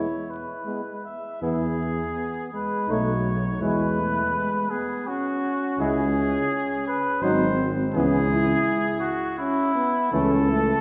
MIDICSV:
0, 0, Header, 1, 6, 480
1, 0, Start_track
1, 0, Key_signature, 4, "major"
1, 0, Tempo, 745342
1, 913, Time_signature, 3, 2, 24, 8
1, 1863, Tempo, 722892
1, 7119, End_track
2, 0, Start_track
2, 0, Title_t, "Trumpet"
2, 0, Program_c, 0, 56
2, 0, Note_on_c, 0, 73, 48
2, 193, Note_on_c, 0, 71, 39
2, 202, Note_off_c, 0, 73, 0
2, 673, Note_off_c, 0, 71, 0
2, 677, Note_on_c, 0, 76, 44
2, 911, Note_off_c, 0, 76, 0
2, 917, Note_on_c, 0, 68, 59
2, 1604, Note_off_c, 0, 68, 0
2, 1635, Note_on_c, 0, 71, 61
2, 1872, Note_on_c, 0, 73, 65
2, 1882, Note_off_c, 0, 71, 0
2, 2340, Note_off_c, 0, 73, 0
2, 2344, Note_on_c, 0, 71, 72
2, 3062, Note_on_c, 0, 68, 62
2, 3072, Note_off_c, 0, 71, 0
2, 3308, Note_on_c, 0, 66, 68
2, 3318, Note_off_c, 0, 68, 0
2, 3789, Note_off_c, 0, 66, 0
2, 3797, Note_on_c, 0, 68, 74
2, 4493, Note_off_c, 0, 68, 0
2, 4507, Note_on_c, 0, 71, 73
2, 4737, Note_on_c, 0, 72, 66
2, 4747, Note_off_c, 0, 71, 0
2, 5051, Note_off_c, 0, 72, 0
2, 5216, Note_on_c, 0, 68, 80
2, 5905, Note_off_c, 0, 68, 0
2, 5918, Note_on_c, 0, 66, 75
2, 6160, Note_off_c, 0, 66, 0
2, 6176, Note_on_c, 0, 64, 78
2, 6658, Note_off_c, 0, 64, 0
2, 6668, Note_on_c, 0, 69, 88
2, 7119, Note_off_c, 0, 69, 0
2, 7119, End_track
3, 0, Start_track
3, 0, Title_t, "Flugelhorn"
3, 0, Program_c, 1, 56
3, 0, Note_on_c, 1, 64, 62
3, 400, Note_off_c, 1, 64, 0
3, 907, Note_on_c, 1, 64, 44
3, 1080, Note_off_c, 1, 64, 0
3, 1850, Note_on_c, 1, 63, 47
3, 2026, Note_off_c, 1, 63, 0
3, 2339, Note_on_c, 1, 64, 46
3, 2512, Note_off_c, 1, 64, 0
3, 3786, Note_on_c, 1, 64, 53
3, 3957, Note_off_c, 1, 64, 0
3, 4739, Note_on_c, 1, 63, 57
3, 4911, Note_off_c, 1, 63, 0
3, 5225, Note_on_c, 1, 59, 58
3, 5392, Note_off_c, 1, 59, 0
3, 6660, Note_on_c, 1, 57, 64
3, 6834, Note_off_c, 1, 57, 0
3, 7119, End_track
4, 0, Start_track
4, 0, Title_t, "French horn"
4, 0, Program_c, 2, 60
4, 427, Note_on_c, 2, 59, 35
4, 530, Note_off_c, 2, 59, 0
4, 1394, Note_on_c, 2, 59, 46
4, 1613, Note_off_c, 2, 59, 0
4, 1631, Note_on_c, 2, 56, 43
4, 1860, Note_off_c, 2, 56, 0
4, 1869, Note_on_c, 2, 54, 47
4, 2337, Note_off_c, 2, 54, 0
4, 2345, Note_on_c, 2, 56, 47
4, 2585, Note_on_c, 2, 57, 49
4, 2595, Note_off_c, 2, 56, 0
4, 2827, Note_on_c, 2, 56, 49
4, 2837, Note_off_c, 2, 57, 0
4, 3063, Note_off_c, 2, 56, 0
4, 3067, Note_on_c, 2, 59, 51
4, 3311, Note_on_c, 2, 61, 65
4, 3321, Note_off_c, 2, 59, 0
4, 4741, Note_off_c, 2, 61, 0
4, 4745, Note_on_c, 2, 60, 62
4, 5225, Note_on_c, 2, 61, 62
4, 5235, Note_off_c, 2, 60, 0
4, 5458, Note_off_c, 2, 61, 0
4, 5462, Note_on_c, 2, 64, 72
4, 5980, Note_off_c, 2, 64, 0
4, 6172, Note_on_c, 2, 61, 63
4, 6401, Note_off_c, 2, 61, 0
4, 6418, Note_on_c, 2, 59, 65
4, 6661, Note_off_c, 2, 59, 0
4, 6667, Note_on_c, 2, 61, 68
4, 6909, Note_on_c, 2, 57, 58
4, 6919, Note_off_c, 2, 61, 0
4, 7119, Note_off_c, 2, 57, 0
4, 7119, End_track
5, 0, Start_track
5, 0, Title_t, "Trombone"
5, 0, Program_c, 3, 57
5, 423, Note_on_c, 3, 56, 36
5, 527, Note_off_c, 3, 56, 0
5, 918, Note_on_c, 3, 59, 47
5, 1086, Note_off_c, 3, 59, 0
5, 1865, Note_on_c, 3, 57, 47
5, 2035, Note_off_c, 3, 57, 0
5, 2341, Note_on_c, 3, 56, 49
5, 2513, Note_off_c, 3, 56, 0
5, 3790, Note_on_c, 3, 56, 53
5, 3959, Note_off_c, 3, 56, 0
5, 4738, Note_on_c, 3, 54, 56
5, 4910, Note_off_c, 3, 54, 0
5, 5223, Note_on_c, 3, 52, 58
5, 5391, Note_off_c, 3, 52, 0
5, 6665, Note_on_c, 3, 52, 59
5, 6837, Note_off_c, 3, 52, 0
5, 7119, End_track
6, 0, Start_track
6, 0, Title_t, "Tuba"
6, 0, Program_c, 4, 58
6, 912, Note_on_c, 4, 40, 48
6, 1310, Note_off_c, 4, 40, 0
6, 1862, Note_on_c, 4, 35, 49
6, 2263, Note_off_c, 4, 35, 0
6, 2340, Note_on_c, 4, 40, 55
6, 2744, Note_off_c, 4, 40, 0
6, 3784, Note_on_c, 4, 37, 58
6, 4184, Note_off_c, 4, 37, 0
6, 4739, Note_on_c, 4, 32, 59
6, 5140, Note_off_c, 4, 32, 0
6, 5221, Note_on_c, 4, 37, 64
6, 5618, Note_off_c, 4, 37, 0
6, 6665, Note_on_c, 4, 37, 68
6, 7064, Note_off_c, 4, 37, 0
6, 7119, End_track
0, 0, End_of_file